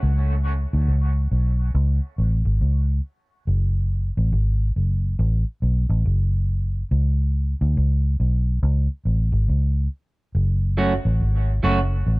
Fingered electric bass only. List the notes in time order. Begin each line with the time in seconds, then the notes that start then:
0.03 C#2
0.73 D2
0.88 C#2
1.31 B1
1.75 C#2
2.18 A1
2.45 G#1
2.61 C#2
3.47 F#1
4.17 A1
4.32 G#1
4.76 F#1
5.19 A1
5.62 B1
5.89 A1
6.05 F#1
6.91 C#2
7.61 D2
7.77 C#2
8.20 B1
8.63 C#2
9.05 A1
9.32 G#1
9.48 C#2
10.35 F#1
11.05 A1
11.21 G#1
11.64 F#1
12.06 A1